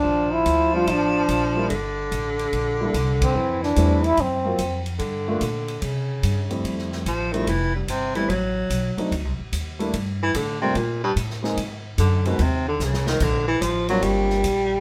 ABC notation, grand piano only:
X:1
M:4/4
L:1/8
Q:"Swing" 1/4=146
K:F
V:1 name="Grand piano"
z3 [F,G,CD] z3 [G,B,DE] | z4 z [G,B,DE] z2 | z2 [G,A,CE] z2 [_G,B,CF] z2 | z [A,B,DF] z4 z [F,,G,A,CE]- |
[F,,G,A,CE]2 z [F,G,A,CE] z3 [G,A,=B,CE] | z3 [_G,A,CD_E] z3 [=G,A,B,D=E] | z3 [G,A,B,DF] z3 [_A,B,C_E_A] | z3 [_A,B,C_E_G] z4 |
z3 [G,B,CDF]3 z2 |]